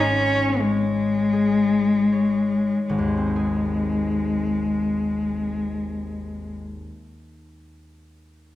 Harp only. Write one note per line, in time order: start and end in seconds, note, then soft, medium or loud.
0.00 2.68 G#1 medium
0.00 2.69 G#2 medium
0.00 3.07 G#3 medium
0.00 1.32 G#4 medium
0.00 0.59 C#5 medium
0.60 2.11 C#5 medium
1.33 3.35 G#4 medium
2.12 2.95 C#5 medium
2.89 6.79 G#1 medium
2.98 6.88 D#2 medium
3.08 6.73 G#3 soft
3.17 6.82 C4 medium
3.26 6.91 D#4 soft
3.36 7.01 G#4 medium